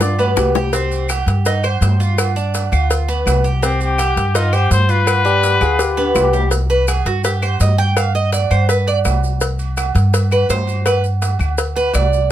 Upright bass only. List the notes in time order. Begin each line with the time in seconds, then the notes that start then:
Already playing: G2
0.36 C2
1.26 G2
1.81 G2
2.72 D2
3.26 C2
4.16 G2
4.71 G2
5.61 D2
6.15 C2
7.05 G2
7.60 G2
8.50 G2
9.05 C2
9.95 G2
10.49 G2
11.39 D2
11.93 C2